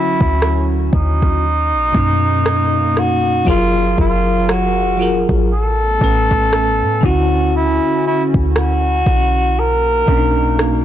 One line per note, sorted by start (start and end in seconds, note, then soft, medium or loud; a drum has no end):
0.00 0.58 D3 medium
0.00 0.18 F#3 medium
0.00 1.41 F#3 medium
0.00 0.58 C#4 medium
0.00 1.40 C#4 medium
0.00 0.59 E4 medium
0.00 0.71 E4 loud
0.00 0.63 F#4 medium
0.00 1.41 F#4 medium
0.21 0.90 D2 loud
0.21 kick medium
0.42 cross-stick loud
0.93 1.75 D#2 loud
0.93 3.00 D#4 loud
0.93 kick medium
1.22 kick medium
1.44 3.45 B2 medium
1.44 3.45 A#3 medium
1.44 3.45 D#4 loud
1.73 1.94 A#1 medium
1.92 3.43 F#2 loud
1.92 3.23 B2 medium
1.92 3.23 A#3 medium
1.92 3.24 C#4 medium
1.92 kick medium
1.97 3.25 D#4 medium
2.46 cross-stick loud
2.97 3.48 F#4 medium
2.97 cross-stick medium
3.45 3.96 F#1 loud
3.45 4.75 F#3 medium
3.45 5.48 F#3 medium
3.45 4.76 F4 medium
3.45 5.48 G#4 medium
3.45 4.77 G#4 medium
3.45 5.48 A#4 medium
3.45 5.48 F5 medium
3.45 kick loud
3.49 3.96 F4 medium
3.49 4.77 A#4 loud
3.98 5.25 F#1 loud
3.98 4.52 F4 medium
3.98 kick loud
4.49 5.28 F#4 medium
4.49 cross-stick loud
4.98 5.49 F#3 medium
4.98 5.50 F4 medium
4.98 5.51 G#4 medium
5.02 5.52 A#4 medium
5.29 5.99 A1 loud
5.29 kick medium
5.50 7.01 A3 medium
5.50 7.01 B3 medium
5.50 9.53 C#4 medium
5.50 7.07 A4 loud
5.99 6.83 A1 loud
5.99 7.02 A2 medium
5.99 7.03 A3 medium
5.99 7.01 C#4 medium
5.99 kick medium
6.04 7.04 B4 medium
6.31 kick loud
6.53 cross-stick loud
6.82 7.02 A2 loud
7.01 7.80 D2 loud
7.01 8.71 D3 medium
7.01 9.55 D3 medium
7.01 8.72 C#4 medium
7.01 9.55 E4 medium
7.01 8.73 E4 medium
7.01 9.55 F#4 medium
7.01 kick loud
7.05 7.55 F#4 medium
7.05 8.74 F#4 medium
7.56 8.02 E4 medium
8.07 8.23 E4 medium
8.34 9.04 D2 loud
8.34 kick medium
8.56 9.61 F#4 loud
8.56 cross-stick loud
9.06 10.04 B1 loud
9.06 kick medium
9.57 10.85 B2 medium
9.57 10.85 A#3 medium
9.57 10.85 D#4 medium
9.57 10.85 A#4 loud
10.06 10.85 B1 loud
10.06 10.85 B2 medium
10.06 10.85 A#3 medium
10.06 10.85 C#4 medium
10.06 kick medium
10.11 10.17 D4 medium
10.17 10.85 D#4 medium
10.59 cross-stick loud